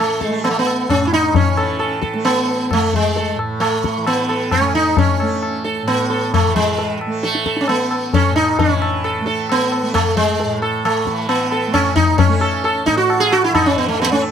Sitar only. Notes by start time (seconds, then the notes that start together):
0.00 A3
0.20 G#3 A4
0.45 B3
0.51 A3
0.59 B3
0.90 C#4
1.07 E4
1.13 D#4
1.36 C#4
1.58 A4
1.79 A4
2.01 A4
2.25 B3
2.73 A3
2.96 G#3
3.17 A4
3.60 A3
4.07 B3
4.30 A4
4.52 C#4
4.75 D#4
4.98 C#4
5.64 A4
5.88 B3
6.10 A4
6.34 A3
6.56 G#3
7.23 A3 A4
7.46 A4
7.61 C#4
7.69 B3
8.14 C#4 A4
8.36 D#4
8.59 C#4
9.04 A4
9.26 A4
9.52 B3
9.94 A3
10.17 G#3
10.62 A4
10.85 A3
11.29 B3
11.52 A4
11.74 C#4
11.96 D#4
12.18 C#4
12.41 A4
12.64 A4
12.86 D#4
12.97 F#4
13.20 G#4
13.32 F#4
13.44 E4
13.55 D#4
13.66 C#4
13.78 B3
13.88 A3
14.02 A3 B3
14.06 B3
14.12 C#4